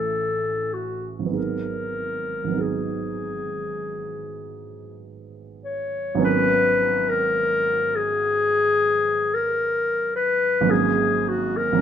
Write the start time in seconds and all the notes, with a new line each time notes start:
Already playing: A1 E3 A3 C#4 G#4 A4
0.73 F#4
1.19 G#1 F#3
1.26 B3 D#4
1.34 G#4 A#4
2.44 G#1 F#3
2.51 B3 D#4
2.58 G#4
5.65 C#5
6.15 G#1 F#3
6.19 B3 C#4 A#4
6.25 B4
7.09 A#4
7.96 G#4
9.34 A#4
10.16 B4
10.61 G#1 F#3
10.65 A#3 C#4
10.69 G#4
11.28 F#4
11.57 A#4
11.72 G#1 F#3
11.76 A#3